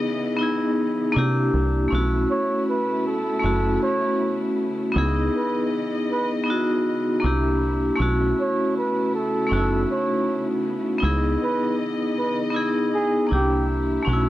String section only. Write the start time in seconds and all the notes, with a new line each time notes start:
Already playing: C#3 E3 B3 D#5
1.15 C3 A#3 D4
1.90 C#3 A3 B3 E4
4.96 E3 D#5
7.23 D3 A#3 C4 E4
7.98 C#3 A3 B3 E4
11.01 E3 D#5
13.30 D3 A#3 C4 E4
14.06 C#3 A3 B3